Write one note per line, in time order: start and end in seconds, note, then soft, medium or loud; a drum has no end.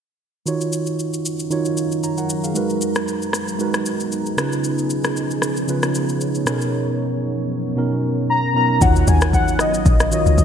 0.46 1.30 D#3 medium
0.46 4.34 F#3 medium
0.46 2.53 C#4 medium
0.46 1.30 D#4 medium
0.46 8.78 D#4 medium
0.46 1.31 F4 medium
0.46 1.31 F#4 medium
0.46 1.31 C#5 medium
0.46 2.53 F5 medium
0.46 4.34 A#5 medium
0.46 shaker medium
0.61 shaker soft
0.72 shaker medium
0.86 shaker soft
0.99 shaker medium
1.13 shaker medium
1.25 shaker medium
1.39 shaker medium
1.50 2.14 D#3 medium
1.50 2.14 D#4 medium
1.50 2.15 F4 medium
1.50 2.15 F#4 medium
1.50 1.78 C#5 medium
1.50 shaker medium
1.65 shaker medium
1.77 shaker medium
1.92 shaker soft
2.03 2.17 C#5 medium
2.03 2.17 A#5 medium
2.03 shaker medium
2.18 2.43 A#4 medium
2.18 2.42 F#5 medium
2.18 shaker soft
2.29 shaker medium
2.44 2.69 G#4 medium
2.44 2.69 F5 medium
2.44 shaker medium
2.54 3.39 G#3 medium
2.54 8.77 B3 medium
2.54 3.39 D#4 medium
2.54 3.39 F#4 medium
2.54 6.43 G#4 medium
2.54 3.40 A#4 medium
2.54 3.40 B4 medium
2.54 shaker medium
2.70 shaker soft
2.81 shaker medium
2.95 cross-stick medium
2.95 shaker medium
3.08 shaker medium
3.22 shaker medium
3.33 cross-stick medium
3.33 shaker medium
3.48 shaker medium
3.59 4.23 G#3 medium
3.59 4.23 D#4 medium
3.59 4.23 F#4 medium
3.59 4.24 A#4 medium
3.59 4.24 B4 medium
3.59 shaker medium
3.74 cross-stick medium
3.74 shaker medium
3.86 shaker medium
4.00 shaker soft
4.12 shaker medium
4.26 shaker soft
4.37 5.22 C#3 medium
4.37 6.45 F3 medium
4.37 5.22 C#4 medium
4.37 5.22 D#4 medium
4.37 5.22 F4 medium
4.37 5.23 B4 medium
4.37 8.77 C#5 medium
4.37 cross-stick loud
4.37 shaker medium
4.52 shaker medium
4.64 shaker medium
4.78 shaker soft
4.90 shaker medium
5.04 cross-stick medium
5.04 shaker soft
5.17 shaker medium
5.31 shaker medium
5.42 cross-stick medium
5.42 shaker medium
5.57 shaker medium
5.67 6.32 C#3 medium
5.67 6.32 C#4 medium
5.67 6.32 D#4 medium
5.67 6.32 F4 medium
5.67 6.33 B4 medium
5.67 shaker medium
5.83 cross-stick medium
5.83 shaker medium
5.95 shaker medium
6.09 shaker medium
6.21 shaker medium
6.35 shaker soft
6.46 7.30 B2 medium
6.46 8.79 F#3 medium
6.46 7.30 B3 medium
6.46 7.31 C#4 medium
6.46 7.31 D#4 medium
6.46 6.54 A4 medium
6.46 8.79 A#4 medium
6.46 cross-stick medium
6.46 shaker medium
6.54 7.34 A#4 medium
6.61 shaker medium
7.76 8.40 B2 medium
7.76 8.41 B3 medium
7.76 8.41 C#4 medium
7.76 8.41 D#4 medium
7.76 8.41 A#4 medium
8.30 8.54 A#5 loud
8.54 8.76 B2 medium
8.54 8.77 B3 medium
8.54 8.77 C#4 medium
8.54 8.77 D#4 medium
8.54 8.78 A#4 medium
8.54 8.83 A#5 loud
8.80 9.06 D#2 loud
8.80 9.65 D#3 medium
8.80 10.45 D#3 medium
8.80 10.45 F#3 medium
8.80 10.45 C#4 medium
8.80 9.65 D#4 medium
8.80 9.66 F4 medium
8.80 9.66 F#4 medium
8.80 9.66 C#5 medium
8.80 10.45 F5 loud
8.80 9.10 F#5 loud
8.80 kick loud
8.80 impact medium
8.80 shaker medium
8.96 shaker medium
9.07 9.57 D#2 loud
9.07 9.34 G#5 loud
9.07 shaker medium
9.21 cross-stick loud
9.21 shaker medium
9.33 9.58 F#5 loud
9.33 kick medium
9.33 shaker medium
9.48 shaker medium
9.59 10.09 D#5 loud
9.59 cross-stick medium
9.59 shaker loud
9.74 shaker medium
9.86 10.24 A#1 loud
9.86 kick loud
9.86 shaker medium
10.00 cross-stick medium
10.00 shaker medium
10.11 10.45 D#3 medium
10.11 10.45 D#4 medium
10.11 10.45 F4 medium
10.11 10.45 F#4 medium
10.11 10.45 C#5 medium
10.11 10.45 D#5 loud
10.11 shaker loud
10.26 10.37 C#2 medium
10.26 shaker medium
10.38 10.45 C#2 loud
10.38 kick medium
10.38 shaker medium